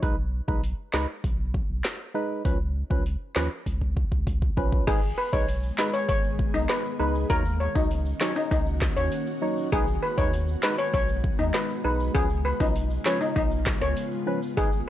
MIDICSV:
0, 0, Header, 1, 6, 480
1, 0, Start_track
1, 0, Tempo, 606061
1, 21, Time_signature, 4, 2, 24, 8
1, 11793, End_track
2, 0, Start_track
2, 0, Title_t, "Steel pan"
2, 0, Program_c, 0, 114
2, 3860, Note_on_c, 0, 68, 108
2, 3938, Note_off_c, 0, 68, 0
2, 4100, Note_on_c, 0, 71, 83
2, 4178, Note_off_c, 0, 71, 0
2, 4222, Note_on_c, 0, 73, 72
2, 4299, Note_off_c, 0, 73, 0
2, 4580, Note_on_c, 0, 71, 75
2, 4658, Note_off_c, 0, 71, 0
2, 4701, Note_on_c, 0, 73, 76
2, 4778, Note_off_c, 0, 73, 0
2, 4820, Note_on_c, 0, 73, 86
2, 4898, Note_off_c, 0, 73, 0
2, 5180, Note_on_c, 0, 63, 78
2, 5258, Note_off_c, 0, 63, 0
2, 5301, Note_on_c, 0, 71, 74
2, 5379, Note_off_c, 0, 71, 0
2, 5541, Note_on_c, 0, 71, 70
2, 5619, Note_off_c, 0, 71, 0
2, 5780, Note_on_c, 0, 70, 103
2, 5858, Note_off_c, 0, 70, 0
2, 6021, Note_on_c, 0, 73, 79
2, 6098, Note_off_c, 0, 73, 0
2, 6141, Note_on_c, 0, 63, 81
2, 6219, Note_off_c, 0, 63, 0
2, 6501, Note_on_c, 0, 73, 72
2, 6579, Note_off_c, 0, 73, 0
2, 6622, Note_on_c, 0, 63, 79
2, 6700, Note_off_c, 0, 63, 0
2, 6741, Note_on_c, 0, 63, 83
2, 6819, Note_off_c, 0, 63, 0
2, 7101, Note_on_c, 0, 73, 77
2, 7179, Note_off_c, 0, 73, 0
2, 7701, Note_on_c, 0, 68, 106
2, 7779, Note_off_c, 0, 68, 0
2, 7940, Note_on_c, 0, 71, 82
2, 8018, Note_off_c, 0, 71, 0
2, 8060, Note_on_c, 0, 73, 76
2, 8138, Note_off_c, 0, 73, 0
2, 8420, Note_on_c, 0, 71, 77
2, 8498, Note_off_c, 0, 71, 0
2, 8541, Note_on_c, 0, 73, 79
2, 8618, Note_off_c, 0, 73, 0
2, 8661, Note_on_c, 0, 73, 82
2, 8739, Note_off_c, 0, 73, 0
2, 9021, Note_on_c, 0, 63, 83
2, 9099, Note_off_c, 0, 63, 0
2, 9140, Note_on_c, 0, 71, 73
2, 9218, Note_off_c, 0, 71, 0
2, 9381, Note_on_c, 0, 71, 69
2, 9459, Note_off_c, 0, 71, 0
2, 9620, Note_on_c, 0, 68, 102
2, 9698, Note_off_c, 0, 68, 0
2, 9860, Note_on_c, 0, 71, 75
2, 9938, Note_off_c, 0, 71, 0
2, 9981, Note_on_c, 0, 63, 83
2, 10059, Note_off_c, 0, 63, 0
2, 10340, Note_on_c, 0, 73, 76
2, 10418, Note_off_c, 0, 73, 0
2, 10461, Note_on_c, 0, 63, 77
2, 10539, Note_off_c, 0, 63, 0
2, 10580, Note_on_c, 0, 63, 84
2, 10658, Note_off_c, 0, 63, 0
2, 10941, Note_on_c, 0, 73, 74
2, 11019, Note_off_c, 0, 73, 0
2, 11542, Note_on_c, 0, 68, 105
2, 11619, Note_off_c, 0, 68, 0
2, 11793, End_track
3, 0, Start_track
3, 0, Title_t, "Synth stab"
3, 0, Program_c, 1, 62
3, 18, Note_on_c, 1, 56, 95
3, 21, Note_on_c, 1, 63, 88
3, 23, Note_on_c, 1, 71, 108
3, 121, Note_off_c, 1, 56, 0
3, 123, Note_off_c, 1, 63, 0
3, 124, Note_off_c, 1, 71, 0
3, 378, Note_on_c, 1, 56, 78
3, 381, Note_on_c, 1, 63, 76
3, 383, Note_on_c, 1, 71, 86
3, 481, Note_off_c, 1, 56, 0
3, 482, Note_off_c, 1, 63, 0
3, 484, Note_off_c, 1, 71, 0
3, 739, Note_on_c, 1, 56, 79
3, 741, Note_on_c, 1, 63, 76
3, 744, Note_on_c, 1, 71, 89
3, 841, Note_off_c, 1, 56, 0
3, 843, Note_off_c, 1, 63, 0
3, 844, Note_off_c, 1, 71, 0
3, 1699, Note_on_c, 1, 56, 76
3, 1701, Note_on_c, 1, 63, 68
3, 1703, Note_on_c, 1, 71, 90
3, 1921, Note_off_c, 1, 56, 0
3, 1922, Note_off_c, 1, 63, 0
3, 1923, Note_off_c, 1, 71, 0
3, 1939, Note_on_c, 1, 53, 91
3, 1941, Note_on_c, 1, 61, 90
3, 1944, Note_on_c, 1, 71, 107
3, 2041, Note_off_c, 1, 53, 0
3, 2043, Note_off_c, 1, 61, 0
3, 2044, Note_off_c, 1, 71, 0
3, 2299, Note_on_c, 1, 53, 78
3, 2301, Note_on_c, 1, 61, 70
3, 2304, Note_on_c, 1, 71, 88
3, 2401, Note_off_c, 1, 53, 0
3, 2403, Note_off_c, 1, 61, 0
3, 2404, Note_off_c, 1, 71, 0
3, 2659, Note_on_c, 1, 53, 81
3, 2661, Note_on_c, 1, 61, 73
3, 2664, Note_on_c, 1, 71, 87
3, 2762, Note_off_c, 1, 53, 0
3, 2763, Note_off_c, 1, 61, 0
3, 2764, Note_off_c, 1, 71, 0
3, 3619, Note_on_c, 1, 53, 76
3, 3621, Note_on_c, 1, 61, 69
3, 3624, Note_on_c, 1, 71, 85
3, 3841, Note_off_c, 1, 53, 0
3, 3842, Note_off_c, 1, 61, 0
3, 3843, Note_off_c, 1, 71, 0
3, 3859, Note_on_c, 1, 56, 98
3, 3861, Note_on_c, 1, 63, 91
3, 3864, Note_on_c, 1, 71, 106
3, 3962, Note_off_c, 1, 56, 0
3, 3963, Note_off_c, 1, 63, 0
3, 3964, Note_off_c, 1, 71, 0
3, 4219, Note_on_c, 1, 56, 82
3, 4221, Note_on_c, 1, 63, 73
3, 4224, Note_on_c, 1, 71, 87
3, 4321, Note_off_c, 1, 56, 0
3, 4323, Note_off_c, 1, 63, 0
3, 4324, Note_off_c, 1, 71, 0
3, 4579, Note_on_c, 1, 56, 82
3, 4581, Note_on_c, 1, 63, 77
3, 4583, Note_on_c, 1, 71, 89
3, 4681, Note_off_c, 1, 56, 0
3, 4682, Note_off_c, 1, 63, 0
3, 4684, Note_off_c, 1, 71, 0
3, 5539, Note_on_c, 1, 56, 80
3, 5541, Note_on_c, 1, 63, 74
3, 5544, Note_on_c, 1, 71, 91
3, 5761, Note_off_c, 1, 56, 0
3, 5762, Note_off_c, 1, 63, 0
3, 5763, Note_off_c, 1, 71, 0
3, 5779, Note_on_c, 1, 54, 100
3, 5781, Note_on_c, 1, 63, 89
3, 5784, Note_on_c, 1, 73, 109
3, 5881, Note_off_c, 1, 54, 0
3, 5883, Note_off_c, 1, 63, 0
3, 5884, Note_off_c, 1, 73, 0
3, 6139, Note_on_c, 1, 54, 80
3, 6141, Note_on_c, 1, 63, 71
3, 6143, Note_on_c, 1, 73, 89
3, 6241, Note_off_c, 1, 54, 0
3, 6243, Note_off_c, 1, 63, 0
3, 6244, Note_off_c, 1, 73, 0
3, 6499, Note_on_c, 1, 54, 82
3, 6502, Note_on_c, 1, 63, 76
3, 6504, Note_on_c, 1, 73, 88
3, 6602, Note_off_c, 1, 54, 0
3, 6603, Note_off_c, 1, 63, 0
3, 6604, Note_off_c, 1, 73, 0
3, 7459, Note_on_c, 1, 54, 77
3, 7461, Note_on_c, 1, 63, 70
3, 7464, Note_on_c, 1, 73, 86
3, 7681, Note_off_c, 1, 54, 0
3, 7682, Note_off_c, 1, 63, 0
3, 7683, Note_off_c, 1, 73, 0
3, 7699, Note_on_c, 1, 56, 99
3, 7702, Note_on_c, 1, 63, 90
3, 7704, Note_on_c, 1, 71, 113
3, 7802, Note_off_c, 1, 56, 0
3, 7803, Note_off_c, 1, 63, 0
3, 7804, Note_off_c, 1, 71, 0
3, 8059, Note_on_c, 1, 56, 81
3, 8061, Note_on_c, 1, 63, 73
3, 8064, Note_on_c, 1, 71, 92
3, 8161, Note_off_c, 1, 56, 0
3, 8163, Note_off_c, 1, 63, 0
3, 8164, Note_off_c, 1, 71, 0
3, 8420, Note_on_c, 1, 56, 79
3, 8422, Note_on_c, 1, 63, 73
3, 8424, Note_on_c, 1, 71, 93
3, 8522, Note_off_c, 1, 56, 0
3, 8523, Note_off_c, 1, 63, 0
3, 8524, Note_off_c, 1, 71, 0
3, 9379, Note_on_c, 1, 56, 77
3, 9381, Note_on_c, 1, 63, 70
3, 9383, Note_on_c, 1, 71, 86
3, 9601, Note_off_c, 1, 56, 0
3, 9602, Note_off_c, 1, 63, 0
3, 9603, Note_off_c, 1, 71, 0
3, 9618, Note_on_c, 1, 53, 100
3, 9621, Note_on_c, 1, 61, 89
3, 9623, Note_on_c, 1, 71, 103
3, 9721, Note_off_c, 1, 53, 0
3, 9722, Note_off_c, 1, 61, 0
3, 9724, Note_off_c, 1, 71, 0
3, 9978, Note_on_c, 1, 53, 79
3, 9980, Note_on_c, 1, 61, 72
3, 9983, Note_on_c, 1, 71, 86
3, 10081, Note_off_c, 1, 53, 0
3, 10082, Note_off_c, 1, 61, 0
3, 10083, Note_off_c, 1, 71, 0
3, 10339, Note_on_c, 1, 53, 81
3, 10341, Note_on_c, 1, 61, 78
3, 10343, Note_on_c, 1, 71, 90
3, 10441, Note_off_c, 1, 53, 0
3, 10443, Note_off_c, 1, 61, 0
3, 10444, Note_off_c, 1, 71, 0
3, 11299, Note_on_c, 1, 53, 80
3, 11301, Note_on_c, 1, 61, 70
3, 11304, Note_on_c, 1, 71, 87
3, 11402, Note_off_c, 1, 53, 0
3, 11403, Note_off_c, 1, 61, 0
3, 11404, Note_off_c, 1, 71, 0
3, 11539, Note_on_c, 1, 56, 97
3, 11542, Note_on_c, 1, 63, 93
3, 11544, Note_on_c, 1, 71, 110
3, 11642, Note_off_c, 1, 56, 0
3, 11643, Note_off_c, 1, 63, 0
3, 11644, Note_off_c, 1, 71, 0
3, 11793, End_track
4, 0, Start_track
4, 0, Title_t, "Ambient pad"
4, 0, Program_c, 2, 92
4, 3861, Note_on_c, 2, 51, 80
4, 3862, Note_on_c, 2, 56, 73
4, 3862, Note_on_c, 2, 59, 71
4, 3862, Note_on_c, 2, 68, 87
4, 5762, Note_off_c, 2, 56, 0
4, 5762, Note_off_c, 2, 68, 0
4, 5763, Note_off_c, 2, 59, 0
4, 5781, Note_on_c, 2, 58, 72
4, 5781, Note_on_c, 2, 61, 76
4, 5781, Note_on_c, 2, 66, 90
4, 7682, Note_off_c, 2, 58, 0
4, 7682, Note_off_c, 2, 61, 0
4, 7701, Note_on_c, 2, 56, 74
4, 7701, Note_on_c, 2, 59, 75
4, 9590, Note_off_c, 2, 51, 0
4, 9590, Note_off_c, 2, 66, 0
4, 9602, Note_off_c, 2, 59, 0
4, 9622, Note_on_c, 2, 59, 74
4, 9622, Note_on_c, 2, 65, 94
4, 9623, Note_on_c, 2, 49, 79
4, 11522, Note_off_c, 2, 65, 0
4, 11523, Note_off_c, 2, 49, 0
4, 11793, Note_off_c, 2, 56, 0
4, 11793, Note_off_c, 2, 59, 0
4, 11793, End_track
5, 0, Start_track
5, 0, Title_t, "Sub bass"
5, 0, Program_c, 3, 38
5, 21, Note_on_c, 3, 35, 106
5, 325, Note_off_c, 3, 35, 0
5, 381, Note_on_c, 3, 35, 93
5, 584, Note_off_c, 3, 35, 0
5, 741, Note_on_c, 3, 37, 92
5, 842, Note_off_c, 3, 37, 0
5, 982, Note_on_c, 3, 35, 107
5, 1285, Note_off_c, 3, 35, 0
5, 1341, Note_on_c, 3, 35, 91
5, 1442, Note_off_c, 3, 35, 0
5, 1941, Note_on_c, 3, 37, 108
5, 2245, Note_off_c, 3, 37, 0
5, 2301, Note_on_c, 3, 37, 97
5, 2504, Note_off_c, 3, 37, 0
5, 2661, Note_on_c, 3, 39, 93
5, 2762, Note_off_c, 3, 39, 0
5, 2901, Note_on_c, 3, 37, 95
5, 3205, Note_off_c, 3, 37, 0
5, 3261, Note_on_c, 3, 37, 89
5, 3565, Note_off_c, 3, 37, 0
5, 3621, Note_on_c, 3, 35, 96
5, 3824, Note_off_c, 3, 35, 0
5, 3861, Note_on_c, 3, 32, 119
5, 4063, Note_off_c, 3, 32, 0
5, 4221, Note_on_c, 3, 35, 79
5, 4525, Note_off_c, 3, 35, 0
5, 4822, Note_on_c, 3, 32, 100
5, 5125, Note_off_c, 3, 32, 0
5, 5181, Note_on_c, 3, 35, 93
5, 5282, Note_off_c, 3, 35, 0
5, 5542, Note_on_c, 3, 37, 91
5, 5744, Note_off_c, 3, 37, 0
5, 5781, Note_on_c, 3, 39, 107
5, 6085, Note_off_c, 3, 39, 0
5, 6142, Note_on_c, 3, 37, 90
5, 6445, Note_off_c, 3, 37, 0
5, 6742, Note_on_c, 3, 37, 94
5, 7045, Note_off_c, 3, 37, 0
5, 7101, Note_on_c, 3, 39, 95
5, 7202, Note_off_c, 3, 39, 0
5, 7701, Note_on_c, 3, 35, 112
5, 7904, Note_off_c, 3, 35, 0
5, 8061, Note_on_c, 3, 39, 92
5, 8365, Note_off_c, 3, 39, 0
5, 8662, Note_on_c, 3, 35, 97
5, 8965, Note_off_c, 3, 35, 0
5, 9022, Note_on_c, 3, 39, 103
5, 9123, Note_off_c, 3, 39, 0
5, 9381, Note_on_c, 3, 35, 98
5, 9584, Note_off_c, 3, 35, 0
5, 9621, Note_on_c, 3, 37, 104
5, 9925, Note_off_c, 3, 37, 0
5, 9981, Note_on_c, 3, 35, 97
5, 10285, Note_off_c, 3, 35, 0
5, 10582, Note_on_c, 3, 35, 91
5, 10885, Note_off_c, 3, 35, 0
5, 10942, Note_on_c, 3, 37, 96
5, 11043, Note_off_c, 3, 37, 0
5, 11542, Note_on_c, 3, 32, 121
5, 11744, Note_off_c, 3, 32, 0
5, 11793, End_track
6, 0, Start_track
6, 0, Title_t, "Drums"
6, 21, Note_on_c, 9, 36, 116
6, 21, Note_on_c, 9, 42, 68
6, 100, Note_off_c, 9, 36, 0
6, 100, Note_off_c, 9, 42, 0
6, 381, Note_on_c, 9, 36, 97
6, 461, Note_off_c, 9, 36, 0
6, 503, Note_on_c, 9, 42, 73
6, 583, Note_off_c, 9, 42, 0
6, 740, Note_on_c, 9, 39, 94
6, 741, Note_on_c, 9, 38, 120
6, 819, Note_off_c, 9, 39, 0
6, 820, Note_off_c, 9, 38, 0
6, 982, Note_on_c, 9, 36, 89
6, 982, Note_on_c, 9, 42, 69
6, 1061, Note_off_c, 9, 36, 0
6, 1062, Note_off_c, 9, 42, 0
6, 1222, Note_on_c, 9, 36, 89
6, 1301, Note_off_c, 9, 36, 0
6, 1461, Note_on_c, 9, 39, 91
6, 1461, Note_on_c, 9, 42, 80
6, 1462, Note_on_c, 9, 38, 108
6, 1540, Note_off_c, 9, 42, 0
6, 1541, Note_off_c, 9, 38, 0
6, 1541, Note_off_c, 9, 39, 0
6, 1941, Note_on_c, 9, 36, 116
6, 1942, Note_on_c, 9, 42, 70
6, 2020, Note_off_c, 9, 36, 0
6, 2021, Note_off_c, 9, 42, 0
6, 2301, Note_on_c, 9, 36, 95
6, 2381, Note_off_c, 9, 36, 0
6, 2424, Note_on_c, 9, 42, 70
6, 2503, Note_off_c, 9, 42, 0
6, 2660, Note_on_c, 9, 39, 93
6, 2661, Note_on_c, 9, 38, 118
6, 2739, Note_off_c, 9, 39, 0
6, 2740, Note_off_c, 9, 38, 0
6, 2901, Note_on_c, 9, 36, 58
6, 2903, Note_on_c, 9, 42, 68
6, 2980, Note_off_c, 9, 36, 0
6, 2982, Note_off_c, 9, 42, 0
6, 3021, Note_on_c, 9, 36, 52
6, 3100, Note_off_c, 9, 36, 0
6, 3141, Note_on_c, 9, 36, 71
6, 3220, Note_off_c, 9, 36, 0
6, 3261, Note_on_c, 9, 36, 66
6, 3340, Note_off_c, 9, 36, 0
6, 3381, Note_on_c, 9, 36, 87
6, 3381, Note_on_c, 9, 42, 79
6, 3460, Note_off_c, 9, 36, 0
6, 3460, Note_off_c, 9, 42, 0
6, 3501, Note_on_c, 9, 36, 79
6, 3580, Note_off_c, 9, 36, 0
6, 3621, Note_on_c, 9, 36, 99
6, 3700, Note_off_c, 9, 36, 0
6, 3741, Note_on_c, 9, 36, 86
6, 3820, Note_off_c, 9, 36, 0
6, 3860, Note_on_c, 9, 82, 75
6, 3861, Note_on_c, 9, 36, 124
6, 3861, Note_on_c, 9, 42, 75
6, 3861, Note_on_c, 9, 49, 99
6, 3939, Note_off_c, 9, 82, 0
6, 3940, Note_off_c, 9, 36, 0
6, 3940, Note_off_c, 9, 42, 0
6, 3940, Note_off_c, 9, 49, 0
6, 3980, Note_on_c, 9, 82, 52
6, 4059, Note_off_c, 9, 82, 0
6, 4101, Note_on_c, 9, 82, 51
6, 4180, Note_off_c, 9, 82, 0
6, 4221, Note_on_c, 9, 36, 96
6, 4222, Note_on_c, 9, 82, 86
6, 4300, Note_off_c, 9, 36, 0
6, 4301, Note_off_c, 9, 82, 0
6, 4343, Note_on_c, 9, 42, 71
6, 4346, Note_on_c, 9, 82, 70
6, 4423, Note_off_c, 9, 42, 0
6, 4425, Note_off_c, 9, 82, 0
6, 4460, Note_on_c, 9, 82, 55
6, 4539, Note_off_c, 9, 82, 0
6, 4580, Note_on_c, 9, 39, 96
6, 4580, Note_on_c, 9, 82, 56
6, 4581, Note_on_c, 9, 38, 116
6, 4659, Note_off_c, 9, 39, 0
6, 4660, Note_off_c, 9, 38, 0
6, 4660, Note_off_c, 9, 82, 0
6, 4701, Note_on_c, 9, 82, 85
6, 4781, Note_off_c, 9, 82, 0
6, 4820, Note_on_c, 9, 82, 74
6, 4822, Note_on_c, 9, 36, 91
6, 4823, Note_on_c, 9, 42, 72
6, 4900, Note_off_c, 9, 82, 0
6, 4901, Note_off_c, 9, 36, 0
6, 4902, Note_off_c, 9, 42, 0
6, 4941, Note_on_c, 9, 82, 42
6, 5020, Note_off_c, 9, 82, 0
6, 5062, Note_on_c, 9, 36, 90
6, 5141, Note_off_c, 9, 36, 0
6, 5181, Note_on_c, 9, 82, 72
6, 5260, Note_off_c, 9, 82, 0
6, 5301, Note_on_c, 9, 39, 91
6, 5301, Note_on_c, 9, 42, 82
6, 5302, Note_on_c, 9, 38, 110
6, 5303, Note_on_c, 9, 82, 86
6, 5380, Note_off_c, 9, 39, 0
6, 5380, Note_off_c, 9, 42, 0
6, 5381, Note_off_c, 9, 38, 0
6, 5382, Note_off_c, 9, 82, 0
6, 5419, Note_on_c, 9, 82, 47
6, 5498, Note_off_c, 9, 82, 0
6, 5664, Note_on_c, 9, 82, 70
6, 5743, Note_off_c, 9, 82, 0
6, 5780, Note_on_c, 9, 82, 80
6, 5781, Note_on_c, 9, 36, 122
6, 5781, Note_on_c, 9, 42, 77
6, 5860, Note_off_c, 9, 36, 0
6, 5860, Note_off_c, 9, 42, 0
6, 5860, Note_off_c, 9, 82, 0
6, 5899, Note_on_c, 9, 82, 56
6, 5978, Note_off_c, 9, 82, 0
6, 6021, Note_on_c, 9, 82, 49
6, 6100, Note_off_c, 9, 82, 0
6, 6141, Note_on_c, 9, 36, 100
6, 6142, Note_on_c, 9, 82, 85
6, 6221, Note_off_c, 9, 36, 0
6, 6221, Note_off_c, 9, 82, 0
6, 6264, Note_on_c, 9, 42, 71
6, 6266, Note_on_c, 9, 82, 71
6, 6343, Note_off_c, 9, 42, 0
6, 6345, Note_off_c, 9, 82, 0
6, 6380, Note_on_c, 9, 82, 57
6, 6459, Note_off_c, 9, 82, 0
6, 6500, Note_on_c, 9, 82, 56
6, 6501, Note_on_c, 9, 39, 99
6, 6502, Note_on_c, 9, 38, 122
6, 6580, Note_off_c, 9, 39, 0
6, 6580, Note_off_c, 9, 82, 0
6, 6581, Note_off_c, 9, 38, 0
6, 6621, Note_on_c, 9, 82, 83
6, 6700, Note_off_c, 9, 82, 0
6, 6740, Note_on_c, 9, 82, 71
6, 6742, Note_on_c, 9, 36, 95
6, 6743, Note_on_c, 9, 42, 72
6, 6819, Note_off_c, 9, 82, 0
6, 6821, Note_off_c, 9, 36, 0
6, 6822, Note_off_c, 9, 42, 0
6, 6861, Note_on_c, 9, 82, 43
6, 6940, Note_off_c, 9, 82, 0
6, 6982, Note_on_c, 9, 36, 98
6, 6982, Note_on_c, 9, 39, 97
6, 6983, Note_on_c, 9, 38, 121
6, 7061, Note_off_c, 9, 36, 0
6, 7061, Note_off_c, 9, 39, 0
6, 7062, Note_off_c, 9, 38, 0
6, 7101, Note_on_c, 9, 82, 70
6, 7180, Note_off_c, 9, 82, 0
6, 7221, Note_on_c, 9, 42, 83
6, 7223, Note_on_c, 9, 82, 84
6, 7300, Note_off_c, 9, 42, 0
6, 7302, Note_off_c, 9, 82, 0
6, 7339, Note_on_c, 9, 82, 48
6, 7418, Note_off_c, 9, 82, 0
6, 7584, Note_on_c, 9, 82, 70
6, 7663, Note_off_c, 9, 82, 0
6, 7700, Note_on_c, 9, 82, 77
6, 7701, Note_on_c, 9, 36, 113
6, 7701, Note_on_c, 9, 42, 75
6, 7780, Note_off_c, 9, 36, 0
6, 7780, Note_off_c, 9, 82, 0
6, 7781, Note_off_c, 9, 42, 0
6, 7819, Note_on_c, 9, 82, 53
6, 7899, Note_off_c, 9, 82, 0
6, 7941, Note_on_c, 9, 82, 51
6, 8020, Note_off_c, 9, 82, 0
6, 8061, Note_on_c, 9, 36, 105
6, 8062, Note_on_c, 9, 82, 81
6, 8141, Note_off_c, 9, 36, 0
6, 8141, Note_off_c, 9, 82, 0
6, 8184, Note_on_c, 9, 42, 73
6, 8185, Note_on_c, 9, 82, 72
6, 8263, Note_off_c, 9, 42, 0
6, 8265, Note_off_c, 9, 82, 0
6, 8299, Note_on_c, 9, 82, 55
6, 8378, Note_off_c, 9, 82, 0
6, 8419, Note_on_c, 9, 82, 55
6, 8420, Note_on_c, 9, 39, 99
6, 8421, Note_on_c, 9, 38, 121
6, 8499, Note_off_c, 9, 82, 0
6, 8500, Note_off_c, 9, 38, 0
6, 8500, Note_off_c, 9, 39, 0
6, 8540, Note_on_c, 9, 82, 83
6, 8619, Note_off_c, 9, 82, 0
6, 8660, Note_on_c, 9, 82, 71
6, 8662, Note_on_c, 9, 36, 98
6, 8662, Note_on_c, 9, 42, 69
6, 8739, Note_off_c, 9, 82, 0
6, 8741, Note_off_c, 9, 36, 0
6, 8742, Note_off_c, 9, 42, 0
6, 8781, Note_on_c, 9, 82, 42
6, 8860, Note_off_c, 9, 82, 0
6, 8902, Note_on_c, 9, 36, 97
6, 8981, Note_off_c, 9, 36, 0
6, 9020, Note_on_c, 9, 82, 73
6, 9099, Note_off_c, 9, 82, 0
6, 9141, Note_on_c, 9, 39, 89
6, 9141, Note_on_c, 9, 42, 83
6, 9142, Note_on_c, 9, 38, 119
6, 9143, Note_on_c, 9, 82, 86
6, 9220, Note_off_c, 9, 39, 0
6, 9220, Note_off_c, 9, 42, 0
6, 9221, Note_off_c, 9, 38, 0
6, 9222, Note_off_c, 9, 82, 0
6, 9259, Note_on_c, 9, 82, 46
6, 9338, Note_off_c, 9, 82, 0
6, 9504, Note_on_c, 9, 82, 70
6, 9583, Note_off_c, 9, 82, 0
6, 9620, Note_on_c, 9, 82, 80
6, 9621, Note_on_c, 9, 36, 118
6, 9621, Note_on_c, 9, 42, 74
6, 9700, Note_off_c, 9, 36, 0
6, 9700, Note_off_c, 9, 42, 0
6, 9700, Note_off_c, 9, 82, 0
6, 9739, Note_on_c, 9, 82, 55
6, 9819, Note_off_c, 9, 82, 0
6, 9861, Note_on_c, 9, 82, 51
6, 9940, Note_off_c, 9, 82, 0
6, 9981, Note_on_c, 9, 36, 97
6, 9982, Note_on_c, 9, 82, 81
6, 10060, Note_off_c, 9, 36, 0
6, 10061, Note_off_c, 9, 82, 0
6, 10103, Note_on_c, 9, 42, 75
6, 10105, Note_on_c, 9, 82, 70
6, 10182, Note_off_c, 9, 42, 0
6, 10185, Note_off_c, 9, 82, 0
6, 10219, Note_on_c, 9, 82, 57
6, 10299, Note_off_c, 9, 82, 0
6, 10340, Note_on_c, 9, 39, 98
6, 10340, Note_on_c, 9, 82, 55
6, 10341, Note_on_c, 9, 38, 121
6, 10419, Note_off_c, 9, 39, 0
6, 10419, Note_off_c, 9, 82, 0
6, 10420, Note_off_c, 9, 38, 0
6, 10461, Note_on_c, 9, 82, 85
6, 10541, Note_off_c, 9, 82, 0
6, 10580, Note_on_c, 9, 82, 72
6, 10582, Note_on_c, 9, 36, 94
6, 10583, Note_on_c, 9, 42, 70
6, 10659, Note_off_c, 9, 82, 0
6, 10661, Note_off_c, 9, 36, 0
6, 10662, Note_off_c, 9, 42, 0
6, 10701, Note_on_c, 9, 82, 44
6, 10780, Note_off_c, 9, 82, 0
6, 10822, Note_on_c, 9, 36, 96
6, 10822, Note_on_c, 9, 38, 118
6, 10822, Note_on_c, 9, 39, 103
6, 10901, Note_off_c, 9, 36, 0
6, 10901, Note_off_c, 9, 39, 0
6, 10902, Note_off_c, 9, 38, 0
6, 10941, Note_on_c, 9, 82, 72
6, 10942, Note_on_c, 9, 37, 91
6, 11020, Note_off_c, 9, 82, 0
6, 11021, Note_off_c, 9, 37, 0
6, 11062, Note_on_c, 9, 42, 81
6, 11063, Note_on_c, 9, 82, 86
6, 11141, Note_off_c, 9, 42, 0
6, 11142, Note_off_c, 9, 82, 0
6, 11179, Note_on_c, 9, 82, 47
6, 11258, Note_off_c, 9, 82, 0
6, 11424, Note_on_c, 9, 82, 71
6, 11503, Note_off_c, 9, 82, 0
6, 11541, Note_on_c, 9, 36, 118
6, 11541, Note_on_c, 9, 42, 77
6, 11541, Note_on_c, 9, 82, 79
6, 11620, Note_off_c, 9, 36, 0
6, 11620, Note_off_c, 9, 42, 0
6, 11620, Note_off_c, 9, 82, 0
6, 11660, Note_on_c, 9, 82, 52
6, 11739, Note_off_c, 9, 82, 0
6, 11793, End_track
0, 0, End_of_file